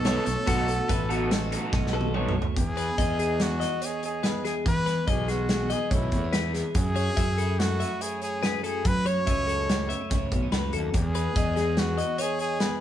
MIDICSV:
0, 0, Header, 1, 8, 480
1, 0, Start_track
1, 0, Key_signature, 4, "major"
1, 0, Tempo, 418702
1, 535, Time_signature, 5, 2, 24, 8
1, 14680, End_track
2, 0, Start_track
2, 0, Title_t, "Clean electric guitar"
2, 0, Program_c, 0, 27
2, 64, Note_on_c, 0, 73, 84
2, 539, Note_off_c, 0, 73, 0
2, 542, Note_on_c, 0, 66, 88
2, 1018, Note_off_c, 0, 66, 0
2, 1024, Note_on_c, 0, 71, 78
2, 1259, Note_off_c, 0, 71, 0
2, 1263, Note_on_c, 0, 66, 78
2, 1504, Note_off_c, 0, 66, 0
2, 1504, Note_on_c, 0, 69, 75
2, 1734, Note_off_c, 0, 69, 0
2, 1734, Note_on_c, 0, 66, 83
2, 2213, Note_off_c, 0, 66, 0
2, 2215, Note_on_c, 0, 69, 74
2, 2455, Note_off_c, 0, 69, 0
2, 2455, Note_on_c, 0, 73, 81
2, 2934, Note_off_c, 0, 73, 0
2, 3176, Note_on_c, 0, 71, 74
2, 3413, Note_off_c, 0, 71, 0
2, 3418, Note_on_c, 0, 75, 71
2, 3656, Note_off_c, 0, 75, 0
2, 3659, Note_on_c, 0, 68, 74
2, 4127, Note_on_c, 0, 75, 74
2, 4136, Note_off_c, 0, 68, 0
2, 4373, Note_off_c, 0, 75, 0
2, 4373, Note_on_c, 0, 73, 91
2, 4849, Note_off_c, 0, 73, 0
2, 4853, Note_on_c, 0, 71, 74
2, 5094, Note_off_c, 0, 71, 0
2, 5097, Note_on_c, 0, 68, 83
2, 5336, Note_off_c, 0, 68, 0
2, 5574, Note_on_c, 0, 71, 83
2, 5809, Note_off_c, 0, 71, 0
2, 5814, Note_on_c, 0, 75, 76
2, 6054, Note_on_c, 0, 68, 73
2, 6055, Note_off_c, 0, 75, 0
2, 6532, Note_on_c, 0, 75, 83
2, 6536, Note_off_c, 0, 68, 0
2, 6767, Note_off_c, 0, 75, 0
2, 6767, Note_on_c, 0, 73, 90
2, 7252, Note_on_c, 0, 71, 80
2, 7253, Note_off_c, 0, 73, 0
2, 7492, Note_off_c, 0, 71, 0
2, 7492, Note_on_c, 0, 68, 77
2, 7735, Note_off_c, 0, 68, 0
2, 7976, Note_on_c, 0, 73, 76
2, 8211, Note_off_c, 0, 73, 0
2, 8216, Note_on_c, 0, 76, 78
2, 8458, Note_off_c, 0, 76, 0
2, 8459, Note_on_c, 0, 69, 73
2, 8939, Note_off_c, 0, 69, 0
2, 8939, Note_on_c, 0, 76, 73
2, 9180, Note_off_c, 0, 76, 0
2, 9180, Note_on_c, 0, 73, 90
2, 9659, Note_on_c, 0, 71, 88
2, 9660, Note_off_c, 0, 73, 0
2, 9895, Note_off_c, 0, 71, 0
2, 9899, Note_on_c, 0, 69, 84
2, 10140, Note_off_c, 0, 69, 0
2, 10384, Note_on_c, 0, 73, 74
2, 10618, Note_off_c, 0, 73, 0
2, 10623, Note_on_c, 0, 76, 74
2, 10858, Note_on_c, 0, 69, 72
2, 10862, Note_off_c, 0, 76, 0
2, 11335, Note_on_c, 0, 76, 71
2, 11339, Note_off_c, 0, 69, 0
2, 11582, Note_off_c, 0, 76, 0
2, 11582, Note_on_c, 0, 73, 88
2, 12058, Note_off_c, 0, 73, 0
2, 12063, Note_on_c, 0, 71, 76
2, 12302, Note_off_c, 0, 71, 0
2, 12304, Note_on_c, 0, 69, 79
2, 12542, Note_off_c, 0, 69, 0
2, 12782, Note_on_c, 0, 71, 76
2, 13025, Note_off_c, 0, 71, 0
2, 13025, Note_on_c, 0, 75, 75
2, 13257, Note_on_c, 0, 68, 70
2, 13262, Note_off_c, 0, 75, 0
2, 13730, Note_on_c, 0, 75, 84
2, 13737, Note_off_c, 0, 68, 0
2, 13965, Note_off_c, 0, 75, 0
2, 13969, Note_on_c, 0, 73, 97
2, 14446, Note_off_c, 0, 73, 0
2, 14451, Note_on_c, 0, 71, 72
2, 14680, Note_off_c, 0, 71, 0
2, 14680, End_track
3, 0, Start_track
3, 0, Title_t, "Trumpet"
3, 0, Program_c, 1, 56
3, 0, Note_on_c, 1, 69, 101
3, 2470, Note_off_c, 1, 69, 0
3, 2949, Note_on_c, 1, 68, 101
3, 3923, Note_on_c, 1, 66, 93
3, 3941, Note_off_c, 1, 68, 0
3, 4416, Note_on_c, 1, 68, 85
3, 4434, Note_off_c, 1, 66, 0
3, 4635, Note_off_c, 1, 68, 0
3, 4651, Note_on_c, 1, 68, 84
3, 5081, Note_off_c, 1, 68, 0
3, 5119, Note_on_c, 1, 68, 85
3, 5222, Note_off_c, 1, 68, 0
3, 5367, Note_on_c, 1, 71, 110
3, 5843, Note_on_c, 1, 68, 94
3, 5861, Note_off_c, 1, 71, 0
3, 6070, Note_on_c, 1, 66, 94
3, 6087, Note_off_c, 1, 68, 0
3, 6565, Note_on_c, 1, 68, 96
3, 6582, Note_off_c, 1, 66, 0
3, 6791, Note_off_c, 1, 68, 0
3, 6821, Note_on_c, 1, 64, 86
3, 7474, Note_off_c, 1, 64, 0
3, 7758, Note_on_c, 1, 68, 113
3, 8709, Note_on_c, 1, 66, 100
3, 8726, Note_off_c, 1, 68, 0
3, 9195, Note_on_c, 1, 68, 87
3, 9212, Note_off_c, 1, 66, 0
3, 9428, Note_off_c, 1, 68, 0
3, 9436, Note_on_c, 1, 68, 92
3, 9875, Note_off_c, 1, 68, 0
3, 9916, Note_on_c, 1, 68, 96
3, 10170, Note_on_c, 1, 71, 108
3, 10187, Note_off_c, 1, 68, 0
3, 10406, Note_on_c, 1, 73, 109
3, 10424, Note_off_c, 1, 71, 0
3, 11834, Note_off_c, 1, 73, 0
3, 12562, Note_on_c, 1, 68, 97
3, 13517, Note_on_c, 1, 66, 93
3, 13534, Note_off_c, 1, 68, 0
3, 14006, Note_on_c, 1, 68, 97
3, 14023, Note_off_c, 1, 66, 0
3, 14222, Note_off_c, 1, 68, 0
3, 14228, Note_on_c, 1, 68, 104
3, 14669, Note_off_c, 1, 68, 0
3, 14680, End_track
4, 0, Start_track
4, 0, Title_t, "Overdriven electric guitar"
4, 0, Program_c, 2, 29
4, 56, Note_on_c, 2, 54, 83
4, 62, Note_on_c, 2, 59, 101
4, 65, Note_on_c, 2, 63, 95
4, 72, Note_on_c, 2, 69, 92
4, 288, Note_off_c, 2, 69, 0
4, 293, Note_off_c, 2, 63, 0
4, 296, Note_off_c, 2, 54, 0
4, 299, Note_off_c, 2, 59, 0
4, 532, Note_on_c, 2, 54, 98
4, 536, Note_on_c, 2, 59, 102
4, 541, Note_on_c, 2, 63, 116
4, 548, Note_on_c, 2, 69, 111
4, 762, Note_off_c, 2, 69, 0
4, 765, Note_off_c, 2, 63, 0
4, 767, Note_off_c, 2, 59, 0
4, 773, Note_off_c, 2, 54, 0
4, 1252, Note_on_c, 2, 69, 83
4, 1256, Note_on_c, 2, 63, 84
4, 1265, Note_on_c, 2, 59, 81
4, 1270, Note_on_c, 2, 54, 80
4, 1493, Note_off_c, 2, 69, 0
4, 1494, Note_off_c, 2, 59, 0
4, 1495, Note_off_c, 2, 54, 0
4, 1495, Note_off_c, 2, 63, 0
4, 1747, Note_on_c, 2, 69, 96
4, 1750, Note_on_c, 2, 63, 95
4, 1755, Note_on_c, 2, 59, 74
4, 1762, Note_on_c, 2, 54, 77
4, 1974, Note_off_c, 2, 54, 0
4, 1974, Note_off_c, 2, 59, 0
4, 1976, Note_off_c, 2, 69, 0
4, 1977, Note_off_c, 2, 63, 0
4, 2464, Note_on_c, 2, 54, 92
4, 2471, Note_on_c, 2, 59, 83
4, 2475, Note_on_c, 2, 63, 89
4, 2479, Note_on_c, 2, 69, 107
4, 2688, Note_off_c, 2, 69, 0
4, 2690, Note_off_c, 2, 63, 0
4, 2694, Note_off_c, 2, 59, 0
4, 2695, Note_off_c, 2, 54, 0
4, 14680, End_track
5, 0, Start_track
5, 0, Title_t, "Clean electric guitar"
5, 0, Program_c, 3, 27
5, 0, Note_on_c, 3, 57, 58
5, 0, Note_on_c, 3, 63, 70
5, 54, Note_on_c, 3, 47, 81
5, 61, Note_on_c, 3, 66, 69
5, 292, Note_off_c, 3, 57, 0
5, 306, Note_on_c, 3, 57, 64
5, 509, Note_off_c, 3, 66, 0
5, 527, Note_off_c, 3, 47, 0
5, 538, Note_on_c, 3, 47, 85
5, 548, Note_on_c, 3, 66, 62
5, 780, Note_off_c, 3, 57, 0
5, 798, Note_on_c, 3, 57, 60
5, 832, Note_off_c, 3, 63, 0
5, 1016, Note_off_c, 3, 66, 0
5, 1021, Note_on_c, 3, 64, 69
5, 1142, Note_off_c, 3, 64, 0
5, 1142, Note_on_c, 3, 66, 56
5, 1277, Note_on_c, 3, 63, 61
5, 1498, Note_off_c, 3, 66, 0
5, 1514, Note_on_c, 3, 66, 65
5, 1745, Note_off_c, 3, 57, 0
5, 1757, Note_on_c, 3, 57, 58
5, 1985, Note_off_c, 3, 63, 0
5, 1998, Note_on_c, 3, 63, 66
5, 2219, Note_off_c, 3, 66, 0
5, 2232, Note_on_c, 3, 66, 63
5, 2456, Note_off_c, 3, 47, 0
5, 2463, Note_off_c, 3, 66, 0
5, 2467, Note_on_c, 3, 47, 68
5, 2480, Note_on_c, 3, 66, 69
5, 2705, Note_off_c, 3, 57, 0
5, 2716, Note_on_c, 3, 57, 62
5, 2916, Note_off_c, 3, 63, 0
5, 2917, Note_off_c, 3, 66, 0
5, 2940, Note_off_c, 3, 47, 0
5, 2945, Note_off_c, 3, 57, 0
5, 2951, Note_on_c, 3, 40, 73
5, 3192, Note_on_c, 3, 52, 55
5, 3443, Note_on_c, 3, 63, 55
5, 3669, Note_off_c, 3, 63, 0
5, 3674, Note_on_c, 3, 63, 63
5, 3914, Note_on_c, 3, 59, 65
5, 4141, Note_off_c, 3, 63, 0
5, 4146, Note_on_c, 3, 63, 59
5, 4376, Note_off_c, 3, 63, 0
5, 4390, Note_on_c, 3, 63, 63
5, 4609, Note_off_c, 3, 63, 0
5, 4623, Note_on_c, 3, 63, 56
5, 4840, Note_off_c, 3, 40, 0
5, 4854, Note_on_c, 3, 40, 70
5, 5090, Note_off_c, 3, 52, 0
5, 5094, Note_on_c, 3, 52, 68
5, 5310, Note_off_c, 3, 63, 0
5, 5316, Note_off_c, 3, 59, 0
5, 5326, Note_off_c, 3, 40, 0
5, 5339, Note_on_c, 3, 40, 75
5, 5571, Note_off_c, 3, 52, 0
5, 5575, Note_on_c, 3, 52, 60
5, 5839, Note_on_c, 3, 59, 55
5, 6057, Note_off_c, 3, 59, 0
5, 6071, Note_on_c, 3, 59, 55
5, 6295, Note_off_c, 3, 59, 0
5, 6300, Note_on_c, 3, 57, 61
5, 6423, Note_off_c, 3, 57, 0
5, 6423, Note_on_c, 3, 59, 48
5, 6540, Note_off_c, 3, 59, 0
5, 6552, Note_on_c, 3, 59, 58
5, 6784, Note_off_c, 3, 59, 0
5, 6792, Note_on_c, 3, 57, 63
5, 6907, Note_off_c, 3, 57, 0
5, 6907, Note_on_c, 3, 59, 49
5, 7022, Note_off_c, 3, 59, 0
5, 7036, Note_on_c, 3, 57, 55
5, 7156, Note_off_c, 3, 57, 0
5, 7156, Note_on_c, 3, 59, 49
5, 7253, Note_off_c, 3, 40, 0
5, 7266, Note_on_c, 3, 40, 72
5, 7505, Note_off_c, 3, 52, 0
5, 7510, Note_on_c, 3, 52, 61
5, 7743, Note_off_c, 3, 40, 0
5, 7747, Note_off_c, 3, 59, 0
5, 7749, Note_on_c, 3, 42, 77
5, 7983, Note_off_c, 3, 52, 0
5, 7988, Note_on_c, 3, 54, 56
5, 8229, Note_on_c, 3, 61, 56
5, 8467, Note_on_c, 3, 64, 69
5, 8712, Note_on_c, 3, 57, 59
5, 8953, Note_off_c, 3, 61, 0
5, 8957, Note_on_c, 3, 61, 59
5, 9173, Note_off_c, 3, 64, 0
5, 9178, Note_on_c, 3, 64, 73
5, 9410, Note_off_c, 3, 61, 0
5, 9423, Note_on_c, 3, 61, 54
5, 9640, Note_off_c, 3, 42, 0
5, 9654, Note_on_c, 3, 42, 77
5, 9892, Note_off_c, 3, 54, 0
5, 9906, Note_on_c, 3, 54, 67
5, 10108, Note_off_c, 3, 42, 0
5, 10113, Note_off_c, 3, 61, 0
5, 10114, Note_off_c, 3, 54, 0
5, 10141, Note_on_c, 3, 42, 74
5, 10388, Note_on_c, 3, 54, 57
5, 10638, Note_on_c, 3, 61, 54
5, 10876, Note_off_c, 3, 64, 0
5, 10881, Note_on_c, 3, 64, 67
5, 11104, Note_off_c, 3, 57, 0
5, 11118, Note_on_c, 3, 57, 58
5, 11334, Note_off_c, 3, 61, 0
5, 11339, Note_on_c, 3, 59, 59
5, 11470, Note_off_c, 3, 59, 0
5, 11470, Note_on_c, 3, 61, 51
5, 11594, Note_off_c, 3, 64, 0
5, 11598, Note_on_c, 3, 64, 68
5, 11825, Note_off_c, 3, 61, 0
5, 11832, Note_on_c, 3, 59, 55
5, 11951, Note_off_c, 3, 59, 0
5, 11951, Note_on_c, 3, 61, 52
5, 12050, Note_off_c, 3, 42, 0
5, 12064, Note_on_c, 3, 42, 76
5, 12291, Note_off_c, 3, 54, 0
5, 12305, Note_on_c, 3, 54, 61
5, 12513, Note_off_c, 3, 42, 0
5, 12514, Note_off_c, 3, 54, 0
5, 12538, Note_on_c, 3, 40, 78
5, 12545, Note_off_c, 3, 61, 0
5, 12549, Note_off_c, 3, 57, 0
5, 12784, Note_on_c, 3, 52, 59
5, 13034, Note_on_c, 3, 63, 57
5, 13262, Note_off_c, 3, 63, 0
5, 13267, Note_on_c, 3, 63, 56
5, 13503, Note_on_c, 3, 59, 58
5, 13740, Note_off_c, 3, 63, 0
5, 13745, Note_on_c, 3, 63, 59
5, 13964, Note_off_c, 3, 63, 0
5, 13978, Note_on_c, 3, 63, 62
5, 14215, Note_off_c, 3, 63, 0
5, 14228, Note_on_c, 3, 63, 60
5, 14431, Note_off_c, 3, 40, 0
5, 14445, Note_on_c, 3, 40, 81
5, 14680, Note_off_c, 3, 40, 0
5, 14680, Note_off_c, 3, 52, 0
5, 14680, Note_off_c, 3, 59, 0
5, 14680, Note_off_c, 3, 63, 0
5, 14680, Note_off_c, 3, 64, 0
5, 14680, End_track
6, 0, Start_track
6, 0, Title_t, "Fingered electric bass"
6, 0, Program_c, 4, 33
6, 0, Note_on_c, 4, 35, 90
6, 195, Note_off_c, 4, 35, 0
6, 308, Note_on_c, 4, 35, 99
6, 397, Note_off_c, 4, 35, 0
6, 546, Note_on_c, 4, 35, 87
6, 917, Note_off_c, 4, 35, 0
6, 1027, Note_on_c, 4, 33, 89
6, 1772, Note_off_c, 4, 33, 0
6, 1981, Note_on_c, 4, 35, 104
6, 2729, Note_off_c, 4, 35, 0
6, 2942, Note_on_c, 4, 40, 88
6, 3314, Note_off_c, 4, 40, 0
6, 3420, Note_on_c, 4, 40, 90
6, 4169, Note_off_c, 4, 40, 0
6, 5342, Note_on_c, 4, 52, 102
6, 5715, Note_off_c, 4, 52, 0
6, 5816, Note_on_c, 4, 35, 84
6, 6568, Note_off_c, 4, 35, 0
6, 6774, Note_on_c, 4, 35, 96
6, 6963, Note_off_c, 4, 35, 0
6, 7017, Note_on_c, 4, 40, 87
6, 7581, Note_off_c, 4, 40, 0
6, 7737, Note_on_c, 4, 42, 91
6, 8113, Note_off_c, 4, 42, 0
6, 8221, Note_on_c, 4, 42, 91
6, 8972, Note_off_c, 4, 42, 0
6, 10146, Note_on_c, 4, 54, 105
6, 10520, Note_off_c, 4, 54, 0
6, 10631, Note_on_c, 4, 37, 86
6, 11378, Note_off_c, 4, 37, 0
6, 11592, Note_on_c, 4, 37, 94
6, 11775, Note_off_c, 4, 37, 0
6, 11829, Note_on_c, 4, 35, 82
6, 12041, Note_off_c, 4, 35, 0
6, 12063, Note_on_c, 4, 37, 81
6, 12278, Note_off_c, 4, 37, 0
6, 12313, Note_on_c, 4, 39, 87
6, 12523, Note_off_c, 4, 39, 0
6, 12541, Note_on_c, 4, 40, 86
6, 12916, Note_off_c, 4, 40, 0
6, 13018, Note_on_c, 4, 40, 94
6, 13769, Note_off_c, 4, 40, 0
6, 14680, End_track
7, 0, Start_track
7, 0, Title_t, "Muted overdriven electric guitar strokes"
7, 302, Note_on_c, 9, 29, 47
7, 417, Note_off_c, 9, 29, 0
7, 776, Note_on_c, 9, 29, 58
7, 891, Note_off_c, 9, 29, 0
7, 1016, Note_on_c, 9, 29, 50
7, 1130, Note_off_c, 9, 29, 0
7, 1508, Note_on_c, 9, 29, 51
7, 1622, Note_off_c, 9, 29, 0
7, 1988, Note_on_c, 9, 29, 47
7, 2102, Note_off_c, 9, 29, 0
7, 2226, Note_on_c, 9, 29, 47
7, 2340, Note_off_c, 9, 29, 0
7, 2702, Note_on_c, 9, 29, 51
7, 2816, Note_off_c, 9, 29, 0
7, 14680, End_track
8, 0, Start_track
8, 0, Title_t, "Drums"
8, 55, Note_on_c, 9, 42, 97
8, 59, Note_on_c, 9, 38, 106
8, 169, Note_off_c, 9, 42, 0
8, 174, Note_off_c, 9, 38, 0
8, 299, Note_on_c, 9, 42, 80
8, 414, Note_off_c, 9, 42, 0
8, 539, Note_on_c, 9, 42, 98
8, 545, Note_on_c, 9, 36, 111
8, 654, Note_off_c, 9, 42, 0
8, 659, Note_off_c, 9, 36, 0
8, 779, Note_on_c, 9, 42, 71
8, 894, Note_off_c, 9, 42, 0
8, 1023, Note_on_c, 9, 42, 91
8, 1025, Note_on_c, 9, 36, 109
8, 1138, Note_off_c, 9, 42, 0
8, 1140, Note_off_c, 9, 36, 0
8, 1266, Note_on_c, 9, 42, 60
8, 1380, Note_off_c, 9, 42, 0
8, 1504, Note_on_c, 9, 42, 101
8, 1508, Note_on_c, 9, 38, 109
8, 1618, Note_off_c, 9, 42, 0
8, 1623, Note_off_c, 9, 38, 0
8, 1745, Note_on_c, 9, 42, 81
8, 1860, Note_off_c, 9, 42, 0
8, 1982, Note_on_c, 9, 36, 115
8, 1982, Note_on_c, 9, 38, 65
8, 2096, Note_off_c, 9, 36, 0
8, 2097, Note_off_c, 9, 38, 0
8, 2142, Note_on_c, 9, 38, 59
8, 2257, Note_off_c, 9, 38, 0
8, 2302, Note_on_c, 9, 48, 82
8, 2416, Note_off_c, 9, 48, 0
8, 2457, Note_on_c, 9, 47, 70
8, 2572, Note_off_c, 9, 47, 0
8, 2620, Note_on_c, 9, 45, 97
8, 2735, Note_off_c, 9, 45, 0
8, 2773, Note_on_c, 9, 43, 100
8, 2887, Note_off_c, 9, 43, 0
8, 2940, Note_on_c, 9, 42, 95
8, 2941, Note_on_c, 9, 36, 101
8, 3054, Note_off_c, 9, 42, 0
8, 3055, Note_off_c, 9, 36, 0
8, 3176, Note_on_c, 9, 42, 61
8, 3291, Note_off_c, 9, 42, 0
8, 3415, Note_on_c, 9, 42, 99
8, 3419, Note_on_c, 9, 36, 104
8, 3530, Note_off_c, 9, 42, 0
8, 3534, Note_off_c, 9, 36, 0
8, 3659, Note_on_c, 9, 42, 64
8, 3773, Note_off_c, 9, 42, 0
8, 3894, Note_on_c, 9, 42, 94
8, 3898, Note_on_c, 9, 38, 118
8, 4009, Note_off_c, 9, 42, 0
8, 4013, Note_off_c, 9, 38, 0
8, 4140, Note_on_c, 9, 42, 73
8, 4144, Note_on_c, 9, 38, 35
8, 4255, Note_off_c, 9, 42, 0
8, 4259, Note_off_c, 9, 38, 0
8, 4376, Note_on_c, 9, 42, 97
8, 4491, Note_off_c, 9, 42, 0
8, 4617, Note_on_c, 9, 42, 75
8, 4732, Note_off_c, 9, 42, 0
8, 4854, Note_on_c, 9, 42, 82
8, 4858, Note_on_c, 9, 38, 108
8, 4968, Note_off_c, 9, 42, 0
8, 4973, Note_off_c, 9, 38, 0
8, 5100, Note_on_c, 9, 42, 74
8, 5105, Note_on_c, 9, 38, 34
8, 5215, Note_off_c, 9, 42, 0
8, 5220, Note_off_c, 9, 38, 0
8, 5340, Note_on_c, 9, 36, 114
8, 5342, Note_on_c, 9, 42, 88
8, 5455, Note_off_c, 9, 36, 0
8, 5457, Note_off_c, 9, 42, 0
8, 5582, Note_on_c, 9, 42, 56
8, 5587, Note_on_c, 9, 38, 33
8, 5697, Note_off_c, 9, 42, 0
8, 5701, Note_off_c, 9, 38, 0
8, 5819, Note_on_c, 9, 36, 98
8, 5819, Note_on_c, 9, 42, 87
8, 5933, Note_off_c, 9, 42, 0
8, 5934, Note_off_c, 9, 36, 0
8, 6058, Note_on_c, 9, 42, 60
8, 6063, Note_on_c, 9, 38, 29
8, 6173, Note_off_c, 9, 42, 0
8, 6177, Note_off_c, 9, 38, 0
8, 6292, Note_on_c, 9, 42, 84
8, 6297, Note_on_c, 9, 38, 115
8, 6407, Note_off_c, 9, 42, 0
8, 6412, Note_off_c, 9, 38, 0
8, 6534, Note_on_c, 9, 42, 67
8, 6539, Note_on_c, 9, 38, 37
8, 6649, Note_off_c, 9, 42, 0
8, 6654, Note_off_c, 9, 38, 0
8, 6774, Note_on_c, 9, 42, 97
8, 6776, Note_on_c, 9, 36, 105
8, 6889, Note_off_c, 9, 42, 0
8, 6891, Note_off_c, 9, 36, 0
8, 7012, Note_on_c, 9, 42, 72
8, 7017, Note_on_c, 9, 36, 75
8, 7127, Note_off_c, 9, 42, 0
8, 7132, Note_off_c, 9, 36, 0
8, 7255, Note_on_c, 9, 42, 98
8, 7259, Note_on_c, 9, 38, 103
8, 7369, Note_off_c, 9, 42, 0
8, 7374, Note_off_c, 9, 38, 0
8, 7503, Note_on_c, 9, 42, 75
8, 7507, Note_on_c, 9, 38, 40
8, 7617, Note_off_c, 9, 42, 0
8, 7622, Note_off_c, 9, 38, 0
8, 7733, Note_on_c, 9, 42, 103
8, 7738, Note_on_c, 9, 36, 114
8, 7848, Note_off_c, 9, 42, 0
8, 7853, Note_off_c, 9, 36, 0
8, 7976, Note_on_c, 9, 42, 61
8, 8091, Note_off_c, 9, 42, 0
8, 8220, Note_on_c, 9, 42, 89
8, 8221, Note_on_c, 9, 36, 108
8, 8334, Note_off_c, 9, 42, 0
8, 8336, Note_off_c, 9, 36, 0
8, 8462, Note_on_c, 9, 42, 62
8, 8577, Note_off_c, 9, 42, 0
8, 8709, Note_on_c, 9, 42, 93
8, 8713, Note_on_c, 9, 38, 118
8, 8823, Note_off_c, 9, 42, 0
8, 8828, Note_off_c, 9, 38, 0
8, 8946, Note_on_c, 9, 42, 79
8, 9060, Note_off_c, 9, 42, 0
8, 9184, Note_on_c, 9, 42, 97
8, 9299, Note_off_c, 9, 42, 0
8, 9419, Note_on_c, 9, 42, 67
8, 9534, Note_off_c, 9, 42, 0
8, 9666, Note_on_c, 9, 42, 85
8, 9670, Note_on_c, 9, 38, 106
8, 9781, Note_off_c, 9, 42, 0
8, 9785, Note_off_c, 9, 38, 0
8, 9905, Note_on_c, 9, 42, 63
8, 10020, Note_off_c, 9, 42, 0
8, 10142, Note_on_c, 9, 42, 83
8, 10147, Note_on_c, 9, 36, 117
8, 10257, Note_off_c, 9, 42, 0
8, 10261, Note_off_c, 9, 36, 0
8, 10386, Note_on_c, 9, 42, 62
8, 10501, Note_off_c, 9, 42, 0
8, 10629, Note_on_c, 9, 36, 115
8, 10629, Note_on_c, 9, 42, 89
8, 10744, Note_off_c, 9, 36, 0
8, 10744, Note_off_c, 9, 42, 0
8, 10876, Note_on_c, 9, 42, 60
8, 10991, Note_off_c, 9, 42, 0
8, 11113, Note_on_c, 9, 42, 94
8, 11117, Note_on_c, 9, 38, 116
8, 11227, Note_off_c, 9, 42, 0
8, 11232, Note_off_c, 9, 38, 0
8, 11348, Note_on_c, 9, 42, 81
8, 11463, Note_off_c, 9, 42, 0
8, 11587, Note_on_c, 9, 42, 103
8, 11590, Note_on_c, 9, 36, 113
8, 11592, Note_on_c, 9, 38, 39
8, 11702, Note_off_c, 9, 42, 0
8, 11704, Note_off_c, 9, 36, 0
8, 11706, Note_off_c, 9, 38, 0
8, 11826, Note_on_c, 9, 42, 78
8, 11829, Note_on_c, 9, 36, 75
8, 11941, Note_off_c, 9, 42, 0
8, 11943, Note_off_c, 9, 36, 0
8, 12061, Note_on_c, 9, 42, 90
8, 12066, Note_on_c, 9, 38, 100
8, 12176, Note_off_c, 9, 42, 0
8, 12180, Note_off_c, 9, 38, 0
8, 12298, Note_on_c, 9, 42, 76
8, 12413, Note_off_c, 9, 42, 0
8, 12538, Note_on_c, 9, 42, 99
8, 12544, Note_on_c, 9, 36, 103
8, 12653, Note_off_c, 9, 42, 0
8, 12659, Note_off_c, 9, 36, 0
8, 12779, Note_on_c, 9, 42, 68
8, 12894, Note_off_c, 9, 42, 0
8, 13018, Note_on_c, 9, 42, 93
8, 13022, Note_on_c, 9, 36, 110
8, 13132, Note_off_c, 9, 42, 0
8, 13137, Note_off_c, 9, 36, 0
8, 13261, Note_on_c, 9, 42, 63
8, 13265, Note_on_c, 9, 38, 29
8, 13376, Note_off_c, 9, 42, 0
8, 13380, Note_off_c, 9, 38, 0
8, 13492, Note_on_c, 9, 42, 86
8, 13496, Note_on_c, 9, 38, 125
8, 13606, Note_off_c, 9, 42, 0
8, 13611, Note_off_c, 9, 38, 0
8, 13737, Note_on_c, 9, 42, 73
8, 13852, Note_off_c, 9, 42, 0
8, 13968, Note_on_c, 9, 42, 103
8, 14082, Note_off_c, 9, 42, 0
8, 14204, Note_on_c, 9, 42, 61
8, 14319, Note_off_c, 9, 42, 0
8, 14445, Note_on_c, 9, 42, 94
8, 14450, Note_on_c, 9, 38, 103
8, 14560, Note_off_c, 9, 42, 0
8, 14564, Note_off_c, 9, 38, 0
8, 14680, End_track
0, 0, End_of_file